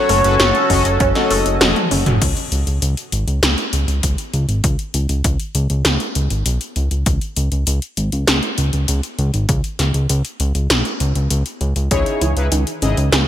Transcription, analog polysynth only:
Already playing: F#3 C#4 F#4 A4 C#5
0.25 F#3 C#4 F#4 A4 B4
0.70 F#3 C#4 F#4 A4 D#5
1.16 F#3 C#4 F#4 A4 D#5
1.61 F#3 C#4 F#4 A4 D#5
11.91 C#3 D#4 E4 G#4 C#5
12.37 C#3 D#4 E4 G#4 B4
12.82 C#3 D#4 E4 G#4 D#5

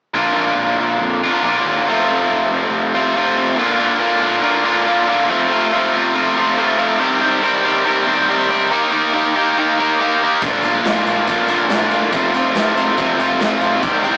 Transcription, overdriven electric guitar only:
0.14 A#2 D3 A#3 D4 F4
1.23 A#2 D3 A#3 D4 F4
1.44 A#2 D3 A#3 D4 F4
1.87 F2 C3 F3 A3 C4 F4
2.94 F2 C3 F3 A3 C4 F4
3.15 F2 C3 F3 A3 C4 F4
3.56 A#2 D3 A#3 D4 F4
3.79 A#2 D3 A#3 D4 F4
4.00 A#2 D3 A#3 D4 F4
4.22 A#2 D3 A#3 D4 F4
4.42 A#2 D3 A#3 D4 F4
4.64 A#2 D3 A#3 D4 F4
4.86 A#2 D3 A#3 D4 F4
5.07 A#2 D3 A#3 D4 F4
5.28 F2 C3 F3 A3 C4 F4
5.50 F2 C3 F3 A3 C4 F4
5.72 F2 C3 F3 A3 C4 F4
5.94 F2 C3 F3 A3 C4 F4
6.14 F2 C3 F3 A3 C4 F4
6.37 F2 C3 F3 A3 C4 F4
6.57 F2 C3 F3 A3 C4 F4
6.77 F2 C3 F3 A3 C4 F4
7.00 C3 D#3 G3 C4 G4
7.20 C3 D#3 G3 C4 G4
7.42 C3 D#3 G3 C4 G4
7.64 C3 D#3 G3 C4 G4
7.85 C3 D#3 G3 C4 G4
8.07 C3 D#3 G3 C4 G4
8.29 C3 D#3 G3 C4 G4
8.49 C3 D#3 G3 C4 G4
8.70 D#3 A#3 D#4 G4
8.91 D#3 A#3 D#4 G4
9.13 D#3 A#3 D#4 G4
9.35 D#3 A#3 D#4 G4
9.58 D#3 A#3 D#4 G4
9.79 D#3 A#3 D#4 G4
10.00 D#3 A#3 D#4 G4
10.23 D#3 A#3 D#4 G4
10.43 A#2 D3 A#3 D4 F4
10.64 A#2 D3 A#3 D4 F4
10.86 A#2 D3 A#3 D4 F4
11.06 A#2 D3 A#3 D4 F4
11.27 A#2 D3 A#3 D4 F4
11.49 A#2 D3 A#3 D4 F4
11.71 A#2 D3 A#3 D4 F4
11.93 A#2 D3 A#3 D4 F4
12.13 F2 C3 F3 A3 C4 F4
12.34 F2 C3 F3 A3 C4 F4
12.55 F2 C3 F3 A3 C4 F4
12.76 F2 C3 F3 A3 C4 F4
12.98 F2 C3 F3 A3 C4 F4
13.19 F2 C3 F3 A3 C4 F4
13.40 F2 C3 F3 A3 C4 F4
13.62 F2 C3 F3 A3 C4 F4
13.82 C3 D#3 G3 C4 G4
14.03 C3 D#3 G3 C4 G4

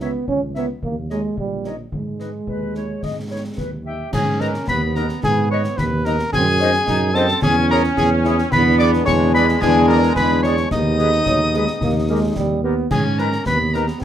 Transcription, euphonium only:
0.02 B3
0.28 C#4
0.57 B3
0.84 A#3
1.11 G#3
1.39 G3
1.94 G#3
11.27 F#3
11.55 G#3
11.83 A#3
12.09 G#3
12.36 G3
12.64 B3

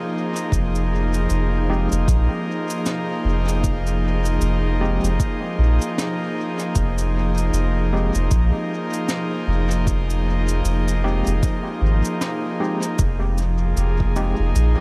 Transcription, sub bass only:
0.52 F1
1.30 F1
1.92 F1
2.08 A#1
3.25 F1
4.42 F1
5.04 F1
5.59 A#1
6.76 F1
7.53 F1
8.15 F1
8.31 A#1
9.48 F1
10.65 F1
11.27 F1
11.82 G#1
12.99 F1
13.77 F1
14.39 F1
14.55 A#1

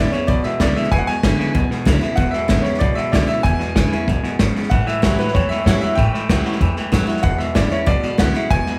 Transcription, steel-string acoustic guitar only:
Already playing: E2 D3 G#3
0.00 B3 E4
0.13 B3 E4
0.28 B2
0.60 D3 G#3 B3 E4
0.92 E2
1.23 D3 G#3 B3 E4
1.55 B2
1.85 D3 G#3 B3 E4
2.01 B3 E4
2.17 E2
2.48 D3 G#3 B3 E4
2.64 B3 E4
2.80 B2
3.13 D3 G#3 B3 E4
3.29 B3 E4
3.46 E2
3.78 D3 G#3 B3 E4
3.93 B3 E4
4.09 F#2
4.40 G#2
4.71 A2
5.02 E3 G3 C#4 E4
5.18 C#4 E4
5.36 E2
5.67 E3 G3 C#4 E4
5.84 C#4 E4
5.99 A2
6.29 E3 G3 C#4 E4
6.61 E2
6.92 E3 G3 C#4 E4
7.07 C#4 E4
7.23 E2
7.55 D3 G#3 B3 E4
7.70 B3 E4
7.86 B2
8.18 D3 G#3 B3 E4
8.35 B3 E4
8.51 E2

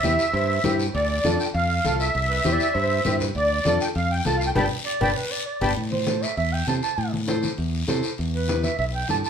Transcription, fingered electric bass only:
0.03 E2
0.33 G2
0.64 G2
0.95 D2
1.24 F2
1.54 F2
1.84 C2
2.15 C2
2.45 E2
2.75 G2
3.05 G2
3.35 D2
3.65 F2
3.96 F2
4.26 C2
4.56 G1
5.01 G1
5.61 G1
5.77 A2
6.37 E2
6.67 C3
6.98 A2
7.58 E2
7.88 C3
8.19 E2
8.79 B1
9.09 G2

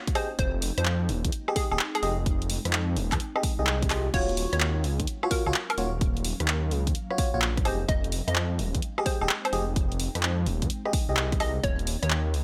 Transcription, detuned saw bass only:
0.39 F1
0.78 F2
1.09 D#1
1.25 F2
1.71 D#1
2.03 F1
2.65 F2
2.96 D#1
3.12 F2
3.59 C2
3.90 C2
4.14 D#1
4.53 D#2
4.84 C#2
5.00 D#2
5.46 C#2
5.78 D#1
6.40 D#2
6.71 C#2
6.87 D#2
7.34 A#1
7.65 F1
7.89 F1
8.28 F2
8.59 D#1
8.75 F2
9.21 D#1
9.53 F1
10.15 F2
10.46 D#1
10.62 F2
11.09 C2
11.40 C2
11.64 D#1
12.03 D#2
12.34 C#2

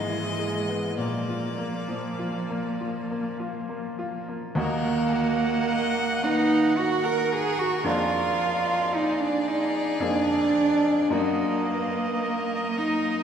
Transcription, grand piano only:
Already playing: G#2
0.09 E4
0.39 G#4
0.69 B3
0.98 A#2
1.30 F4
1.58 A#3
1.88 F3
2.19 F4
2.50 A#3
2.81 F4
3.11 A#3
3.40 F4
3.69 A#3
3.99 F4
4.28 A#3
4.55 D#2 A#3 D#4 F#4
7.84 F2 A#3 D4 G#4
10.00 F2 A#3 D4 G#4
11.10 F#2 A#3 D#4 F#4

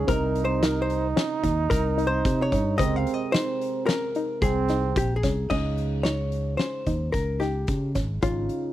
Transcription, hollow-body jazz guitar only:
0.09 A#4
0.45 C5
0.63 A#4
0.82 C5
1.70 A#4
2.07 C5
2.42 C#5
2.78 D#5
2.96 F5
3.14 D#5
3.32 C5
3.86 A#4
4.42 G#4
4.97 G4
5.16 G#4
5.50 D#5
6.03 C#5
6.57 C5
7.12 A#4
7.40 G4
8.23 F4

